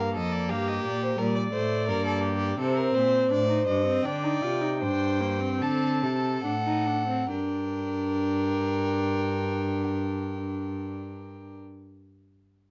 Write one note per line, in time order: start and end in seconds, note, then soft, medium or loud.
0.00 0.17 G2 medium
0.00 1.16 A#3 loud
0.00 0.14 A#4 loud
0.00 0.16 F5 medium
0.14 0.52 F2 medium
0.14 0.51 A4 loud
0.14 0.34 D#5 medium
0.33 0.52 D5 medium
0.49 0.84 G2 medium
0.49 1.20 G4 loud
0.49 0.69 F5 medium
0.68 0.84 D#5 medium
0.85 1.18 A#2 medium
0.85 1.04 D5 medium
1.03 1.19 C5 medium
1.18 1.53 A#2 medium
1.18 1.53 G3 loud
1.18 1.35 A#4 loud
1.18 2.57 D5 loud
1.36 1.43 D5 loud
1.53 1.90 A2 medium
1.53 1.90 A3 loud
1.53 1.88 C5 loud
1.88 2.58 G2 medium
1.88 2.58 A#3 loud
1.88 2.05 A#4 loud
2.06 2.22 A4 loud
2.23 2.58 G4 loud
2.59 2.94 C3 loud
2.59 3.32 C4 loud
2.59 2.78 A4 loud
2.59 4.03 C5 loud
2.77 2.96 A#4 loud
2.94 3.30 A#2 medium
2.94 3.30 C5 loud
3.31 3.67 A2 loud
3.31 3.48 D4 medium
3.31 3.66 D5 loud
3.49 3.67 D#4 medium
3.67 4.04 G2 medium
3.67 3.85 D4 medium
3.67 4.06 D#5 loud
3.86 4.06 C4 medium
4.04 4.42 D3 medium
4.04 4.25 D4 medium
4.04 4.81 D5 loud
4.04 5.63 G5 loud
4.23 4.44 D#4 medium
4.42 4.84 C3 medium
4.42 4.63 F4 medium
4.61 4.82 D#4 medium
4.81 5.63 G2 medium
4.81 5.22 D4 medium
4.81 5.60 C5 medium
5.21 5.42 A#3 medium
5.41 6.43 C4 medium
5.61 6.04 D3 medium
5.61 6.01 A4 medium
5.61 6.43 A5 loud
6.02 6.44 C3 medium
6.02 7.28 A4 medium
6.44 7.29 A2 medium
6.44 6.52 D4 medium
6.44 7.29 F#5 medium
6.65 6.88 D#4 medium
6.86 7.07 D4 medium
7.08 7.30 C4 medium
7.30 11.59 G2 medium
7.30 11.59 D4 medium
7.30 11.59 A#4 medium
7.30 11.59 G5 medium